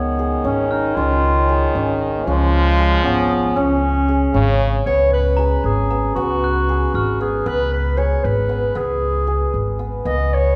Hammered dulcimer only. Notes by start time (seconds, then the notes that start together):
Already playing: C#4 G#4
0.19 G#4
0.44 C#4
0.97 C#4
1.49 G#4
1.76 C#4
2.28 C#4
2.78 G#4
3.04 C#4
3.56 C#4
4.08 G#4
4.34 C#4
4.87 B3
5.38 G#4
5.91 B3
6.16 B3
6.69 G#4
7.21 B3
7.46 B3
7.97 G#4
8.49 B3
8.75 B3
9.27 G#4
9.79 B3
10.05 B3